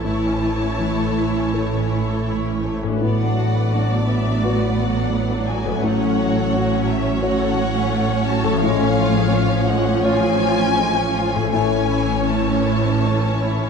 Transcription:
0.00 0.90 A2 soft
0.00 2.23 A5 medium
0.04 5.79 A1 soft
0.04 2.97 A2 soft
0.04 5.79 A2 soft
0.04 2.77 E3 soft
0.04 2.77 E4 soft
0.04 0.23 E4 soft
0.04 2.77 C#5 soft
0.25 0.43 C#4 soft
0.42 0.61 A3 soft
0.61 0.79 C#4 soft
0.79 1.98 E3 soft
0.79 0.98 E4 soft
0.99 1.17 A4 soft
1.17 1.35 E4 soft
1.36 1.54 C#4 soft
1.53 1.71 A3 soft
1.53 2.97 E4 soft
1.53 2.98 A4 soft
1.75 1.92 C#4 soft
1.92 2.10 E4 soft
2.10 2.28 A4 soft
2.29 2.47 E4 soft
2.46 2.65 C#4 soft
2.63 2.82 A3 soft
2.83 5.64 A2 soft
2.83 3.02 C#4 soft
2.87 5.79 D4 soft
2.92 5.72 F#4 soft
2.97 5.84 B4 soft
2.97 4.03 F#5 medium
3.01 5.80 A2 soft
3.01 8.58 F#3 soft
3.01 3.18 B3 soft
3.01 5.79 B3 soft
3.01 5.79 D5 soft
3.19 3.37 D4 soft
3.37 3.55 F#4 soft
3.56 3.73 B4 soft
3.73 4.86 D4 soft
3.73 3.90 F#4 soft
3.90 4.08 D4 soft
4.07 4.25 B3 soft
4.07 4.43 E5 soft
4.26 4.43 D4 soft
4.42 4.59 F#4 soft
4.42 5.80 F#4 soft
4.42 5.80 B4 soft
4.42 5.48 F#5 medium
4.60 4.78 B4 soft
4.78 4.96 F#4 soft
4.95 5.13 D4 soft
5.13 5.31 B3 soft
5.30 5.48 D4 soft
5.47 5.66 F#4 soft
5.47 5.83 G#5 medium
5.65 8.42 A2 soft
5.65 5.83 B4 soft
5.69 8.47 C#4 soft
5.74 8.60 F#4 soft
5.79 8.56 C#5 soft
5.83 11.49 A1 soft
5.83 11.49 A2 soft
5.83 8.58 A2 soft
5.83 6.00 A3 soft
5.83 11.49 C#4 soft
5.83 11.50 C#5 soft
5.83 6.88 F#5 medium
6.01 6.19 C#4 soft
6.19 6.36 F#4 soft
6.35 6.53 A4 soft
6.53 7.65 C#4 soft
6.53 6.71 F#4 soft
6.70 6.88 C#4 soft
6.87 7.05 A3 soft
6.87 7.24 E5 medium
7.04 7.23 C#4 soft
7.22 8.58 F#4 soft
7.22 7.39 F#4 soft
7.22 8.58 C#5 soft
7.22 8.25 F#5 medium
7.39 7.57 A4 soft
7.56 7.74 F#4 soft
7.74 7.92 C#4 soft
7.91 8.09 A3 medium
8.09 8.27 C#4 soft
8.27 8.45 F#4 medium
8.27 8.62 A5 medium
8.44 11.34 A2 medium
8.44 8.62 A4 soft
8.48 11.38 C#4 soft
8.53 11.52 F3 soft
8.57 11.47 C#5 soft
8.57 9.65 F5 medium
8.61 11.49 A2 medium
8.61 11.53 F3 medium
8.61 8.78 G#3 medium
8.80 8.97 C#4 medium
8.97 9.15 F4 medium
9.13 9.32 G#4 medium
9.31 10.48 C#4 soft
9.31 9.49 F4 medium
9.49 9.68 C#4 medium
9.67 9.86 G#3 medium
9.67 10.04 F#5 medium
9.85 10.04 C#4 soft
10.02 10.21 F4 medium
10.02 11.49 F4 soft
10.02 11.49 C#5 soft
10.02 11.51 G#5 medium
10.21 10.40 G#4 medium
10.40 10.59 F4 medium
10.59 10.77 C#4 medium
10.76 10.96 G#3 soft
10.94 11.14 C#4 soft
11.13 11.33 F4 soft
11.33 13.70 A2 soft
11.33 11.53 G#4 soft
11.39 13.70 C#4 soft
11.44 13.70 E4 soft
11.48 13.70 A2 soft
11.48 11.70 A3 soft
11.48 13.70 C#5 soft
11.52 13.70 A1 soft
11.52 13.70 A2 soft
11.52 13.70 E3 soft
11.52 13.70 C#4 soft
11.52 12.28 G#5 medium
11.72 11.92 C#4 soft
11.92 12.11 E4 soft
12.11 12.30 C#4 soft
12.30 12.49 A3 soft
12.30 13.51 C#4 soft
12.30 13.70 A5 medium
12.49 12.68 C#4 soft
12.67 12.86 E4 soft
12.86 13.06 C#4 soft
13.05 13.23 A3 soft
13.05 13.70 E4 soft
13.05 13.70 C#5 soft
13.25 13.44 C#4 soft
13.42 13.62 E4 soft
13.63 13.70 C#4 soft

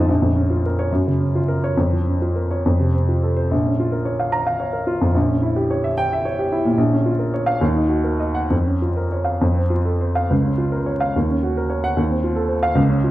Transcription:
0.00 0.09 A#1 medium
0.00 0.12 F2 medium
0.00 0.12 D#4 medium
0.00 0.12 F4 medium
0.00 0.12 A4 medium
0.00 0.12 D#5 medium
0.00 0.11 F5 medium
0.00 0.11 A5 medium
0.09 0.89 A#1 medium
0.22 0.44 F2 soft
0.36 0.58 C#4 soft
0.50 0.72 F4 soft
0.66 0.87 A#4 medium
0.79 0.92 C#5 medium
0.92 1.74 F#2 medium
1.07 1.29 C#3 soft
1.20 1.42 C#4 soft
1.35 1.57 F4 soft
1.48 1.71 A#4 soft
1.64 1.77 C#5 medium
1.77 2.62 F2 medium
1.92 2.15 F3 soft
2.07 2.30 C#4 soft
2.22 2.45 F4 soft
2.36 2.59 A#4 soft
2.51 2.65 C#5 medium
2.66 3.50 F2 medium
2.80 3.02 C3 soft
2.94 3.17 C4 soft
3.09 3.32 F4 soft
3.23 3.46 A4 soft
3.36 3.51 C5 medium
3.51 5.11 A#1 medium
3.66 3.88 C#4 soft
3.80 4.02 F4 soft
3.92 4.15 A#4 medium
4.05 4.28 C#5 medium
4.19 4.42 F5 medium
4.32 4.55 A#5 medium
4.47 4.69 F5 medium
4.60 4.82 C#5 medium
4.73 4.95 A#4 soft
4.87 5.09 F4 medium
5.01 5.15 F2 medium
5.15 6.73 A#1 medium
5.28 5.50 C#4 soft
5.42 5.64 E4 soft
5.56 5.78 G4 medium
5.71 5.92 C#5 medium
5.84 6.05 E5 medium
5.98 6.18 G5 medium
6.13 6.33 E5 medium
6.25 6.46 C#5 medium
6.39 6.59 G4 medium
6.52 6.73 E4 medium
6.65 6.78 A#2 medium
6.78 7.59 A#1 medium
6.93 7.14 C#4 medium
7.06 7.28 F4 soft
7.19 7.42 A#4 medium
7.34 7.56 C#5 medium
7.46 7.61 F5 medium
7.61 8.49 D#2 medium
7.75 7.99 D#4 medium
7.88 8.14 F#4 medium
8.04 8.29 A#4 medium
8.20 8.45 D#5 medium
8.35 8.51 F#5 medium
8.50 9.38 F2 medium
8.66 8.91 C#4 soft
8.82 9.06 F4 soft
8.97 9.21 A#4 soft
9.12 9.36 C#5 soft
9.24 9.41 F5 medium
9.41 10.27 F2 medium
9.55 9.80 C4 soft
9.70 9.94 F4 soft
9.85 10.09 A4 soft
10.01 10.24 C5 soft
10.15 10.30 F5 medium
10.30 11.12 C#2 medium
10.44 10.67 C#4 soft
10.58 10.81 F4 soft
10.72 10.95 A#4 medium
10.86 11.09 C#5 medium
11.00 11.14 F5 medium
11.16 11.95 D#2 medium
11.30 11.51 C#4 medium
11.43 11.65 F#4 soft
11.57 11.79 A#4 medium
11.70 11.92 C#5 soft
11.84 11.97 F#5 medium
11.97 12.75 D#2 medium
12.10 12.32 C4 soft
12.24 12.45 F4 soft
12.36 12.58 A4 medium
12.48 12.71 C5 medium
12.63 12.77 F5 medium
12.75 13.11 C#2 medium
12.89 13.11 C#4 medium
13.04 13.11 F4 soft

